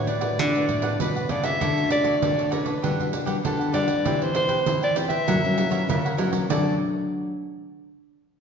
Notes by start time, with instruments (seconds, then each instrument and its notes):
Already playing: nylon-string guitar A2 A3 B3 F#4
0.07 cavaquinho D4 B4 D5 F#5, soprano saxophone D5, pandeiro
0.21 nylon-string guitar A3 B3 F#4, cavaquinho B4 D5 F#5, pandeiro
0.39 nylon-string guitar D3, cavaquinho D4 B4 D5 F#5, pandeiro
0.55 nylon-string guitar A3 B3 F#4, pandeiro
0.68 nylon-string guitar A2, pandeiro
0.82 cavaquinho D4 B4 D5 F#5, pandeiro
1.00 nylon-string guitar A2 B2 A3 B3 F#4, cavaquinho D4 B4 D5 F#5, soprano saxophone B4, pandeiro
1.16 cavaquinho B4 D5 F#5, pandeiro
1.29 nylon-string guitar C#3, cavaquinho D4 B4 D5 F#5, soprano saxophone D5, pandeiro
1.43 nylon-string guitar A3 C#4 F#4, cavaquinho B4 D5 F#5, soprano saxophone E5, pandeiro
1.60 nylon-string guitar D3, cavaquinho F#4 A4 C#5 D5, pandeiro
1.77 nylon-string guitar A3 C#4 F#4, pandeiro
1.90 cavaquinho F#4 A4 C#5 D5, soprano saxophone D5, pandeiro
2.04 nylon-string guitar A3 F#4, cavaquinho F#4 A4 C#5 D5, pandeiro
2.22 nylon-string guitar A2 D3, pandeiro
2.38 cavaquinho A4 C#5 D5, pandeiro
2.50 nylon-string guitar A3 C#4 F#4, cavaquinho F#4 A4 C#5 D5, soprano saxophone B4, pandeiro
2.65 cavaquinho A4 C#5 D5, pandeiro
2.82 nylon-string guitar D3 G3 B3 F#4, cavaquinho D4 G4 B4 F#5, pandeiro
2.99 nylon-string guitar D3 G3 B3 F#4, pandeiro
3.13 pandeiro
3.25 nylon-string guitar G3 B3 F#4, cavaquinho D4 G4 B4 F#5, pandeiro
3.43 nylon-string guitar D3, cavaquinho D4 G4 B4 F#5, soprano saxophone A4, pandeiro
3.59 cavaquinho G4 B4 F#5, pandeiro
3.73 nylon-string guitar D3 G3 B3 F#4, cavaquinho D4 G4 B4 F#5, soprano saxophone D5, pandeiro
3.87 cavaquinho G4 B4 F#5, pandeiro
4.05 nylon-string guitar E3 B3 C4 G4, cavaquinho E4 B4 C5 G5, pandeiro
4.22 nylon-string guitar B3 C4 G4, soprano saxophone C5, pandeiro
4.34 cavaquinho E4 B4 C5 G5, soprano saxophone C5, pandeiro
4.48 nylon-string guitar C4 G4, cavaquinho E4 B4 C5 G5, pandeiro
4.66 nylon-string guitar E3, pandeiro
4.82 cavaquinho B4 C5 G5, soprano saxophone D5, pandeiro
4.95 nylon-string guitar B3 C4 G4, cavaquinho E4 B4 C5 G5, pandeiro
5.09 cavaquinho B4 C5 G5, soprano saxophone E5, pandeiro
5.27 nylon-string guitar F#2 E3 F#3 A#3 C#4, cavaquinho E4 A#4 C#5 F#5, pandeiro
5.43 nylon-string guitar E3 F#3 A#3 C#4, pandeiro
5.58 pandeiro
5.70 nylon-string guitar E3 A#3 C#4, cavaquinho E4 A#4 C#5 F#5, pandeiro
5.88 nylon-string guitar C#3, cavaquinho E4 A#4 C#5 F#5, pandeiro
6.05 cavaquinho A#4 C#5 F#5, pandeiro
6.17 nylon-string guitar E3 F#3 A#3 C#4, cavaquinho E4 A#4 C#5 F#5, pandeiro
6.31 cavaquinho A#4 C#5 F#5, pandeiro
6.49 nylon-string guitar D3 F#3 A3, cavaquinho F#4 A4 C#5 D5, soprano saxophone D5, pandeiro